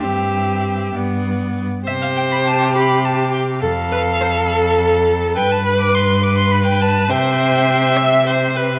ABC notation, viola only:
X:1
M:6/8
L:1/8
Q:3/8=69
K:C
V:1 name="Viola"
C3 B,2 z | c3 G3 | A B c A3 | B3 B3 |
c3 e c B |]